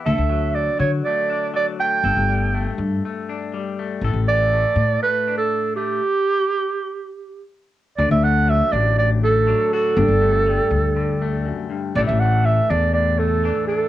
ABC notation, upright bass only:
X:1
M:4/4
L:1/16
Q:1/4=121
K:D
V:1 name="Upright bass" clef=bass
D,, D,,4- D,, D,2 z8 | G,,, G,,,4- G,,, G,,2 z8 | A,,, A,,,4- A,,, A,,2 z8 | z16 |
D,, D,,4- D,, A,,,8 z2 | G,,, G,,,4- G,,, D,,8 z2 | A,,, A,,,4- A,,, E,,8 z2 |]